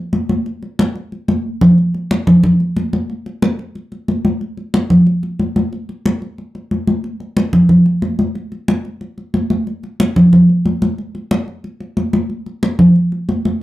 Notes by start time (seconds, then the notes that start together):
0.13 high conga
0.29 high conga
0.46 high conga
0.63 high conga
0.79 high conga
0.95 high conga
1.12 high conga
1.28 high conga
1.61 low conga
1.78 high conga
1.94 high conga
2.11 high conga
2.27 low conga
2.44 high conga, low conga
2.60 high conga
2.77 high conga
2.93 high conga
3.10 high conga
3.26 high conga
3.42 high conga
3.59 high conga
3.75 high conga
3.92 high conga
4.08 high conga
4.25 high conga
4.41 high conga
4.57 high conga
4.74 high conga
4.90 low conga
5.07 high conga
5.23 high conga
5.39 high conga
5.56 high conga
5.73 high conga
5.89 high conga
6.06 high conga
6.22 high conga
6.38 high conga
6.55 high conga
6.71 high conga
6.87 high conga
7.04 high conga
7.20 high conga
7.37 high conga
7.53 low conga
7.69 high conga, low conga
7.86 high conga
8.02 high conga
8.19 high conga
8.35 high conga
8.52 high conga
8.68 high conga
8.85 high conga
9.01 high conga
9.18 high conga
9.34 high conga
9.50 high conga
9.67 high conga
9.83 high conga
10.00 high conga
10.16 low conga
10.33 high conga, low conga
10.49 high conga
10.66 high conga
10.82 high conga
10.98 high conga
11.15 high conga
11.31 high conga
11.48 high conga
11.64 high conga
11.80 high conga
11.97 high conga
12.13 high conga
12.30 high conga
12.46 high conga
12.63 high conga
12.79 low conga
12.96 high conga
13.12 high conga
13.29 high conga
13.45 high conga